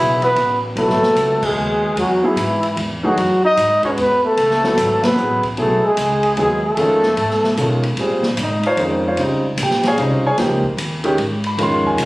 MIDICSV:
0, 0, Header, 1, 7, 480
1, 0, Start_track
1, 0, Tempo, 400534
1, 917, Time_signature, 3, 2, 24, 8
1, 14443, End_track
2, 0, Start_track
2, 0, Title_t, "Trumpet"
2, 0, Program_c, 0, 56
2, 0, Note_on_c, 0, 64, 96
2, 248, Note_off_c, 0, 64, 0
2, 295, Note_on_c, 0, 71, 94
2, 729, Note_off_c, 0, 71, 0
2, 954, Note_on_c, 0, 69, 91
2, 1747, Note_on_c, 0, 68, 95
2, 1765, Note_off_c, 0, 69, 0
2, 2378, Note_off_c, 0, 68, 0
2, 2393, Note_on_c, 0, 66, 86
2, 2714, Note_on_c, 0, 64, 97
2, 2732, Note_off_c, 0, 66, 0
2, 3282, Note_off_c, 0, 64, 0
2, 3666, Note_on_c, 0, 66, 95
2, 4096, Note_off_c, 0, 66, 0
2, 4141, Note_on_c, 0, 75, 123
2, 4573, Note_off_c, 0, 75, 0
2, 4619, Note_on_c, 0, 73, 90
2, 4689, Note_off_c, 0, 73, 0
2, 4797, Note_on_c, 0, 71, 103
2, 5068, Note_off_c, 0, 71, 0
2, 5112, Note_on_c, 0, 69, 101
2, 6049, Note_on_c, 0, 71, 95
2, 6067, Note_off_c, 0, 69, 0
2, 6519, Note_off_c, 0, 71, 0
2, 6704, Note_on_c, 0, 69, 88
2, 7023, Note_on_c, 0, 68, 103
2, 7041, Note_off_c, 0, 69, 0
2, 7655, Note_off_c, 0, 68, 0
2, 7686, Note_on_c, 0, 68, 97
2, 7953, Note_off_c, 0, 68, 0
2, 7973, Note_on_c, 0, 69, 101
2, 9353, Note_off_c, 0, 69, 0
2, 14443, End_track
3, 0, Start_track
3, 0, Title_t, "Grand piano"
3, 0, Program_c, 1, 0
3, 0, Note_on_c, 1, 54, 62
3, 0, Note_on_c, 1, 59, 62
3, 0, Note_on_c, 1, 64, 57
3, 0, Note_on_c, 1, 68, 70
3, 815, Note_off_c, 1, 54, 0
3, 816, Note_off_c, 1, 59, 0
3, 821, Note_off_c, 1, 64, 0
3, 825, Note_off_c, 1, 68, 0
3, 917, Note_on_c, 1, 54, 67
3, 927, Note_on_c, 1, 59, 63
3, 932, Note_on_c, 1, 64, 61
3, 938, Note_on_c, 1, 71, 72
3, 2257, Note_off_c, 1, 54, 0
3, 2262, Note_off_c, 1, 59, 0
3, 2264, Note_off_c, 1, 64, 0
3, 2267, Note_off_c, 1, 71, 0
3, 2678, Note_on_c, 1, 54, 70
3, 2681, Note_on_c, 1, 59, 67
3, 2691, Note_on_c, 1, 64, 61
3, 2695, Note_on_c, 1, 68, 81
3, 2826, Note_off_c, 1, 54, 0
3, 2828, Note_off_c, 1, 59, 0
3, 2832, Note_off_c, 1, 64, 0
3, 2835, Note_off_c, 1, 68, 0
3, 3632, Note_on_c, 1, 52, 65
3, 3635, Note_on_c, 1, 57, 59
3, 3645, Note_on_c, 1, 63, 60
3, 3650, Note_on_c, 1, 68, 69
3, 3783, Note_off_c, 1, 52, 0
3, 3784, Note_off_c, 1, 57, 0
3, 3790, Note_off_c, 1, 63, 0
3, 3792, Note_off_c, 1, 68, 0
3, 4591, Note_on_c, 1, 56, 71
3, 4596, Note_on_c, 1, 61, 62
3, 4605, Note_on_c, 1, 66, 67
3, 4613, Note_on_c, 1, 71, 77
3, 4743, Note_off_c, 1, 56, 0
3, 4745, Note_off_c, 1, 61, 0
3, 4750, Note_off_c, 1, 66, 0
3, 4754, Note_off_c, 1, 71, 0
3, 5557, Note_on_c, 1, 54, 71
3, 5564, Note_on_c, 1, 59, 64
3, 5572, Note_on_c, 1, 64, 61
3, 5578, Note_on_c, 1, 69, 79
3, 6169, Note_off_c, 1, 54, 0
3, 6172, Note_off_c, 1, 59, 0
3, 6176, Note_off_c, 1, 64, 0
3, 6179, Note_off_c, 1, 69, 0
3, 6203, Note_on_c, 1, 54, 55
3, 6205, Note_on_c, 1, 59, 54
3, 6214, Note_on_c, 1, 64, 52
3, 6224, Note_on_c, 1, 68, 60
3, 6481, Note_off_c, 1, 54, 0
3, 6482, Note_off_c, 1, 59, 0
3, 6486, Note_off_c, 1, 64, 0
3, 6491, Note_off_c, 1, 68, 0
3, 6683, Note_on_c, 1, 54, 61
3, 6692, Note_on_c, 1, 59, 59
3, 6700, Note_on_c, 1, 64, 52
3, 6701, Note_on_c, 1, 68, 70
3, 6961, Note_off_c, 1, 54, 0
3, 6965, Note_off_c, 1, 59, 0
3, 6969, Note_off_c, 1, 64, 0
3, 6969, Note_off_c, 1, 68, 0
3, 7639, Note_on_c, 1, 54, 62
3, 7644, Note_on_c, 1, 59, 57
3, 7653, Note_on_c, 1, 64, 54
3, 7658, Note_on_c, 1, 68, 65
3, 7918, Note_off_c, 1, 54, 0
3, 7921, Note_off_c, 1, 59, 0
3, 7925, Note_off_c, 1, 64, 0
3, 7928, Note_off_c, 1, 68, 0
3, 8117, Note_on_c, 1, 51, 70
3, 8124, Note_on_c, 1, 56, 60
3, 8131, Note_on_c, 1, 61, 67
3, 8136, Note_on_c, 1, 65, 73
3, 8397, Note_off_c, 1, 51, 0
3, 8401, Note_off_c, 1, 56, 0
3, 8404, Note_off_c, 1, 61, 0
3, 8407, Note_off_c, 1, 65, 0
3, 9081, Note_on_c, 1, 51, 57
3, 9086, Note_on_c, 1, 56, 54
3, 9096, Note_on_c, 1, 61, 50
3, 9100, Note_on_c, 1, 65, 67
3, 9359, Note_off_c, 1, 51, 0
3, 9362, Note_off_c, 1, 56, 0
3, 9366, Note_off_c, 1, 61, 0
3, 9368, Note_off_c, 1, 65, 0
3, 9577, Note_on_c, 1, 55, 59
3, 9578, Note_on_c, 1, 60, 54
3, 9590, Note_on_c, 1, 65, 51
3, 9592, Note_on_c, 1, 68, 66
3, 9847, Note_off_c, 1, 55, 0
3, 9848, Note_off_c, 1, 60, 0
3, 9853, Note_off_c, 1, 65, 0
3, 9855, Note_off_c, 1, 68, 0
3, 10103, Note_on_c, 1, 63, 55
3, 10104, Note_on_c, 1, 75, 67
3, 10373, Note_off_c, 1, 63, 0
3, 10374, Note_off_c, 1, 75, 0
3, 10384, Note_on_c, 1, 77, 89
3, 10386, Note_on_c, 1, 65, 71
3, 10387, Note_on_c, 1, 72, 74
3, 10387, Note_on_c, 1, 73, 75
3, 10521, Note_on_c, 1, 51, 47
3, 10527, Note_on_c, 1, 56, 48
3, 10530, Note_on_c, 1, 61, 47
3, 10531, Note_off_c, 1, 77, 0
3, 10532, Note_off_c, 1, 65, 0
3, 10532, Note_off_c, 1, 72, 0
3, 10532, Note_off_c, 1, 73, 0
3, 10540, Note_on_c, 1, 63, 57
3, 10583, Note_on_c, 1, 72, 55
3, 10591, Note_on_c, 1, 65, 44
3, 10591, Note_on_c, 1, 68, 44
3, 10592, Note_on_c, 1, 60, 43
3, 10799, Note_off_c, 1, 51, 0
3, 10802, Note_off_c, 1, 56, 0
3, 10804, Note_off_c, 1, 61, 0
3, 10809, Note_off_c, 1, 63, 0
3, 10853, Note_off_c, 1, 72, 0
3, 10857, Note_off_c, 1, 60, 0
3, 10857, Note_off_c, 1, 65, 0
3, 10857, Note_off_c, 1, 68, 0
3, 10873, Note_on_c, 1, 77, 70
3, 10877, Note_on_c, 1, 73, 60
3, 10881, Note_on_c, 1, 65, 65
3, 10881, Note_on_c, 1, 72, 63
3, 11015, Note_on_c, 1, 49, 54
3, 11016, Note_off_c, 1, 77, 0
3, 11018, Note_off_c, 1, 73, 0
3, 11020, Note_off_c, 1, 65, 0
3, 11020, Note_off_c, 1, 72, 0
3, 11020, Note_on_c, 1, 55, 50
3, 11029, Note_on_c, 1, 60, 51
3, 11033, Note_on_c, 1, 63, 59
3, 11286, Note_off_c, 1, 49, 0
3, 11289, Note_off_c, 1, 55, 0
3, 11293, Note_off_c, 1, 60, 0
3, 11295, Note_off_c, 1, 63, 0
3, 11538, Note_on_c, 1, 79, 77
3, 11540, Note_on_c, 1, 67, 56
3, 11811, Note_off_c, 1, 67, 0
3, 11811, Note_off_c, 1, 79, 0
3, 11832, Note_on_c, 1, 80, 99
3, 11836, Note_on_c, 1, 73, 80
3, 11838, Note_on_c, 1, 68, 80
3, 11838, Note_on_c, 1, 77, 80
3, 11959, Note_on_c, 1, 49, 59
3, 11970, Note_on_c, 1, 55, 53
3, 11974, Note_on_c, 1, 60, 54
3, 11975, Note_off_c, 1, 80, 0
3, 11977, Note_off_c, 1, 73, 0
3, 11978, Note_off_c, 1, 77, 0
3, 11979, Note_off_c, 1, 68, 0
3, 11981, Note_on_c, 1, 63, 64
3, 12012, Note_on_c, 1, 77, 59
3, 12015, Note_on_c, 1, 65, 46
3, 12017, Note_on_c, 1, 72, 44
3, 12017, Note_on_c, 1, 73, 52
3, 12238, Note_off_c, 1, 49, 0
3, 12244, Note_off_c, 1, 55, 0
3, 12246, Note_off_c, 1, 60, 0
3, 12250, Note_off_c, 1, 63, 0
3, 12282, Note_off_c, 1, 77, 0
3, 12286, Note_off_c, 1, 73, 0
3, 12289, Note_off_c, 1, 65, 0
3, 12290, Note_off_c, 1, 72, 0
3, 12300, Note_on_c, 1, 77, 69
3, 12302, Note_on_c, 1, 80, 102
3, 12303, Note_on_c, 1, 73, 81
3, 12307, Note_on_c, 1, 68, 80
3, 12392, Note_off_c, 1, 77, 0
3, 12394, Note_off_c, 1, 80, 0
3, 12395, Note_off_c, 1, 73, 0
3, 12397, Note_off_c, 1, 68, 0
3, 12444, Note_on_c, 1, 53, 69
3, 12451, Note_on_c, 1, 58, 65
3, 12453, Note_on_c, 1, 63, 57
3, 12460, Note_on_c, 1, 67, 67
3, 12721, Note_off_c, 1, 53, 0
3, 12724, Note_off_c, 1, 58, 0
3, 12725, Note_off_c, 1, 63, 0
3, 12729, Note_off_c, 1, 67, 0
3, 13228, Note_on_c, 1, 51, 69
3, 13233, Note_on_c, 1, 56, 67
3, 13240, Note_on_c, 1, 61, 64
3, 13246, Note_on_c, 1, 67, 79
3, 13381, Note_off_c, 1, 51, 0
3, 13384, Note_off_c, 1, 56, 0
3, 13387, Note_off_c, 1, 61, 0
3, 13390, Note_off_c, 1, 67, 0
3, 13741, Note_on_c, 1, 83, 87
3, 13882, Note_on_c, 1, 51, 64
3, 13890, Note_off_c, 1, 83, 0
3, 13891, Note_on_c, 1, 56, 59
3, 13891, Note_on_c, 1, 61, 60
3, 13898, Note_on_c, 1, 65, 70
3, 13933, Note_on_c, 1, 84, 94
3, 14209, Note_off_c, 1, 84, 0
3, 14222, Note_on_c, 1, 80, 92
3, 14371, Note_off_c, 1, 80, 0
3, 14443, Note_off_c, 1, 51, 0
3, 14443, Note_off_c, 1, 56, 0
3, 14443, Note_off_c, 1, 61, 0
3, 14443, Note_off_c, 1, 65, 0
3, 14443, End_track
4, 0, Start_track
4, 0, Title_t, "Trombone"
4, 0, Program_c, 2, 57
4, 0, Note_on_c, 2, 52, 69
4, 239, Note_off_c, 2, 52, 0
4, 276, Note_on_c, 2, 59, 81
4, 718, Note_off_c, 2, 59, 0
4, 931, Note_on_c, 2, 57, 84
4, 1726, Note_on_c, 2, 56, 82
4, 1744, Note_off_c, 2, 57, 0
4, 2367, Note_off_c, 2, 56, 0
4, 2373, Note_on_c, 2, 54, 74
4, 2689, Note_on_c, 2, 52, 81
4, 2707, Note_off_c, 2, 54, 0
4, 3269, Note_off_c, 2, 52, 0
4, 3640, Note_on_c, 2, 54, 79
4, 4082, Note_off_c, 2, 54, 0
4, 4127, Note_on_c, 2, 63, 86
4, 4565, Note_off_c, 2, 63, 0
4, 4609, Note_on_c, 2, 61, 80
4, 4681, Note_off_c, 2, 61, 0
4, 4772, Note_on_c, 2, 59, 81
4, 5055, Note_off_c, 2, 59, 0
4, 5083, Note_on_c, 2, 57, 85
4, 6041, Note_on_c, 2, 59, 95
4, 6059, Note_off_c, 2, 57, 0
4, 6515, Note_off_c, 2, 59, 0
4, 6691, Note_on_c, 2, 57, 82
4, 6998, Note_on_c, 2, 56, 81
4, 7016, Note_off_c, 2, 57, 0
4, 7638, Note_off_c, 2, 56, 0
4, 7645, Note_on_c, 2, 56, 80
4, 7931, Note_off_c, 2, 56, 0
4, 7955, Note_on_c, 2, 57, 85
4, 9343, Note_off_c, 2, 57, 0
4, 14443, End_track
5, 0, Start_track
5, 0, Title_t, "Upright bass"
5, 0, Program_c, 3, 32
5, 0, Note_on_c, 3, 35, 89
5, 416, Note_off_c, 3, 35, 0
5, 428, Note_on_c, 3, 33, 93
5, 898, Note_off_c, 3, 33, 0
5, 906, Note_on_c, 3, 35, 84
5, 1071, Note_off_c, 3, 35, 0
5, 1071, Note_on_c, 3, 32, 56
5, 1219, Note_off_c, 3, 32, 0
5, 1381, Note_on_c, 3, 37, 90
5, 1855, Note_off_c, 3, 37, 0
5, 1872, Note_on_c, 3, 39, 91
5, 2336, Note_off_c, 3, 39, 0
5, 2343, Note_on_c, 3, 40, 89
5, 2816, Note_off_c, 3, 40, 0
5, 2823, Note_on_c, 3, 44, 88
5, 3296, Note_off_c, 3, 44, 0
5, 3316, Note_on_c, 3, 40, 93
5, 3783, Note_off_c, 3, 40, 0
5, 3788, Note_on_c, 3, 42, 78
5, 4259, Note_off_c, 3, 42, 0
5, 4273, Note_on_c, 3, 44, 92
5, 4742, Note_off_c, 3, 44, 0
5, 4759, Note_on_c, 3, 40, 91
5, 5225, Note_off_c, 3, 40, 0
5, 5240, Note_on_c, 3, 37, 86
5, 5705, Note_off_c, 3, 37, 0
5, 5725, Note_on_c, 3, 32, 94
5, 6187, Note_off_c, 3, 32, 0
5, 6197, Note_on_c, 3, 33, 89
5, 6664, Note_off_c, 3, 33, 0
5, 6687, Note_on_c, 3, 35, 83
5, 6972, Note_off_c, 3, 35, 0
5, 7158, Note_on_c, 3, 37, 95
5, 7624, Note_off_c, 3, 37, 0
5, 7634, Note_on_c, 3, 39, 97
5, 8101, Note_off_c, 3, 39, 0
5, 8112, Note_on_c, 3, 41, 89
5, 8581, Note_off_c, 3, 41, 0
5, 8593, Note_on_c, 3, 44, 93
5, 9061, Note_off_c, 3, 44, 0
5, 9069, Note_on_c, 3, 47, 97
5, 9539, Note_off_c, 3, 47, 0
5, 9546, Note_on_c, 3, 46, 77
5, 10018, Note_off_c, 3, 46, 0
5, 10031, Note_on_c, 3, 44, 91
5, 10323, Note_off_c, 3, 44, 0
5, 10507, Note_on_c, 3, 41, 88
5, 10978, Note_off_c, 3, 41, 0
5, 10990, Note_on_c, 3, 37, 80
5, 11459, Note_off_c, 3, 37, 0
5, 11479, Note_on_c, 3, 34, 83
5, 11944, Note_off_c, 3, 34, 0
5, 11956, Note_on_c, 3, 36, 93
5, 12423, Note_off_c, 3, 36, 0
5, 12432, Note_on_c, 3, 37, 89
5, 12724, Note_off_c, 3, 37, 0
5, 12908, Note_on_c, 3, 39, 89
5, 13379, Note_off_c, 3, 39, 0
5, 13392, Note_on_c, 3, 44, 94
5, 13859, Note_off_c, 3, 44, 0
5, 13866, Note_on_c, 3, 41, 84
5, 14338, Note_off_c, 3, 41, 0
5, 14349, Note_on_c, 3, 37, 88
5, 14443, Note_off_c, 3, 37, 0
5, 14443, End_track
6, 0, Start_track
6, 0, Title_t, "Muted upright bass strokes"
6, 12740, Note_on_c, 9, 29, 37
6, 12860, Note_off_c, 9, 29, 0
6, 14443, End_track
7, 0, Start_track
7, 0, Title_t, "Drums"
7, 263, Note_on_c, 9, 51, 43
7, 383, Note_off_c, 9, 51, 0
7, 434, Note_on_c, 9, 51, 54
7, 554, Note_off_c, 9, 51, 0
7, 918, Note_on_c, 9, 51, 56
7, 1038, Note_off_c, 9, 51, 0
7, 1076, Note_on_c, 9, 38, 30
7, 1195, Note_off_c, 9, 38, 0
7, 1236, Note_on_c, 9, 38, 42
7, 1356, Note_off_c, 9, 38, 0
7, 1394, Note_on_c, 9, 44, 54
7, 1394, Note_on_c, 9, 51, 69
7, 1514, Note_off_c, 9, 44, 0
7, 1514, Note_off_c, 9, 51, 0
7, 1708, Note_on_c, 9, 36, 81
7, 1708, Note_on_c, 9, 49, 70
7, 1828, Note_off_c, 9, 36, 0
7, 1828, Note_off_c, 9, 49, 0
7, 2359, Note_on_c, 9, 51, 57
7, 2479, Note_off_c, 9, 51, 0
7, 2839, Note_on_c, 9, 44, 59
7, 2839, Note_on_c, 9, 51, 71
7, 2959, Note_off_c, 9, 44, 0
7, 2959, Note_off_c, 9, 51, 0
7, 3149, Note_on_c, 9, 51, 47
7, 3269, Note_off_c, 9, 51, 0
7, 3320, Note_on_c, 9, 51, 55
7, 3440, Note_off_c, 9, 51, 0
7, 3803, Note_on_c, 9, 51, 62
7, 3923, Note_off_c, 9, 51, 0
7, 4282, Note_on_c, 9, 44, 54
7, 4282, Note_on_c, 9, 51, 72
7, 4401, Note_off_c, 9, 44, 0
7, 4401, Note_off_c, 9, 51, 0
7, 4589, Note_on_c, 9, 36, 45
7, 4589, Note_on_c, 9, 51, 44
7, 4709, Note_off_c, 9, 36, 0
7, 4709, Note_off_c, 9, 51, 0
7, 4764, Note_on_c, 9, 51, 62
7, 4883, Note_off_c, 9, 51, 0
7, 5241, Note_on_c, 9, 51, 62
7, 5361, Note_off_c, 9, 51, 0
7, 5404, Note_on_c, 9, 38, 29
7, 5524, Note_off_c, 9, 38, 0
7, 5558, Note_on_c, 9, 38, 43
7, 5678, Note_off_c, 9, 38, 0
7, 5722, Note_on_c, 9, 44, 66
7, 5722, Note_on_c, 9, 51, 67
7, 5842, Note_off_c, 9, 44, 0
7, 5842, Note_off_c, 9, 51, 0
7, 6033, Note_on_c, 9, 38, 80
7, 6033, Note_on_c, 9, 51, 61
7, 6153, Note_off_c, 9, 38, 0
7, 6153, Note_off_c, 9, 51, 0
7, 6202, Note_on_c, 9, 44, 50
7, 6322, Note_off_c, 9, 44, 0
7, 6509, Note_on_c, 9, 36, 59
7, 6509, Note_on_c, 9, 51, 45
7, 6629, Note_off_c, 9, 36, 0
7, 6629, Note_off_c, 9, 51, 0
7, 6676, Note_on_c, 9, 51, 54
7, 6795, Note_off_c, 9, 51, 0
7, 7153, Note_on_c, 9, 44, 63
7, 7153, Note_on_c, 9, 51, 68
7, 7273, Note_off_c, 9, 44, 0
7, 7273, Note_off_c, 9, 51, 0
7, 7464, Note_on_c, 9, 51, 46
7, 7584, Note_off_c, 9, 51, 0
7, 7631, Note_on_c, 9, 51, 53
7, 7751, Note_off_c, 9, 51, 0
7, 8112, Note_on_c, 9, 51, 61
7, 8232, Note_off_c, 9, 51, 0
7, 8423, Note_on_c, 9, 38, 37
7, 8543, Note_off_c, 9, 38, 0
7, 8593, Note_on_c, 9, 51, 64
7, 8712, Note_off_c, 9, 51, 0
7, 8755, Note_on_c, 9, 38, 28
7, 8874, Note_off_c, 9, 38, 0
7, 8915, Note_on_c, 9, 38, 43
7, 9035, Note_off_c, 9, 38, 0
7, 9076, Note_on_c, 9, 44, 58
7, 9076, Note_on_c, 9, 51, 60
7, 9196, Note_off_c, 9, 44, 0
7, 9196, Note_off_c, 9, 51, 0
7, 9387, Note_on_c, 9, 51, 48
7, 9507, Note_off_c, 9, 51, 0
7, 9549, Note_on_c, 9, 51, 56
7, 9669, Note_off_c, 9, 51, 0
7, 9862, Note_on_c, 9, 38, 47
7, 9982, Note_off_c, 9, 38, 0
7, 10030, Note_on_c, 9, 44, 64
7, 10030, Note_on_c, 9, 51, 69
7, 10150, Note_off_c, 9, 44, 0
7, 10150, Note_off_c, 9, 51, 0
7, 10346, Note_on_c, 9, 51, 45
7, 10465, Note_off_c, 9, 51, 0
7, 10512, Note_on_c, 9, 51, 50
7, 10632, Note_off_c, 9, 51, 0
7, 10990, Note_on_c, 9, 51, 51
7, 11109, Note_off_c, 9, 51, 0
7, 11474, Note_on_c, 9, 44, 52
7, 11474, Note_on_c, 9, 51, 73
7, 11594, Note_off_c, 9, 44, 0
7, 11594, Note_off_c, 9, 51, 0
7, 11632, Note_on_c, 9, 38, 30
7, 11751, Note_off_c, 9, 38, 0
7, 11784, Note_on_c, 9, 51, 41
7, 11794, Note_on_c, 9, 38, 45
7, 11904, Note_off_c, 9, 51, 0
7, 11913, Note_off_c, 9, 38, 0
7, 11955, Note_on_c, 9, 51, 50
7, 12075, Note_off_c, 9, 51, 0
7, 12435, Note_on_c, 9, 38, 35
7, 12435, Note_on_c, 9, 51, 59
7, 12555, Note_off_c, 9, 38, 0
7, 12555, Note_off_c, 9, 51, 0
7, 12748, Note_on_c, 9, 36, 49
7, 12868, Note_off_c, 9, 36, 0
7, 12922, Note_on_c, 9, 44, 50
7, 12922, Note_on_c, 9, 51, 73
7, 13042, Note_off_c, 9, 44, 0
7, 13042, Note_off_c, 9, 51, 0
7, 13227, Note_on_c, 9, 51, 46
7, 13346, Note_off_c, 9, 51, 0
7, 13398, Note_on_c, 9, 51, 53
7, 13518, Note_off_c, 9, 51, 0
7, 13706, Note_on_c, 9, 51, 46
7, 13826, Note_off_c, 9, 51, 0
7, 13882, Note_on_c, 9, 51, 58
7, 14002, Note_off_c, 9, 51, 0
7, 14189, Note_on_c, 9, 36, 43
7, 14309, Note_off_c, 9, 36, 0
7, 14358, Note_on_c, 9, 44, 60
7, 14358, Note_on_c, 9, 51, 71
7, 14443, Note_off_c, 9, 44, 0
7, 14443, Note_off_c, 9, 51, 0
7, 14443, End_track
0, 0, End_of_file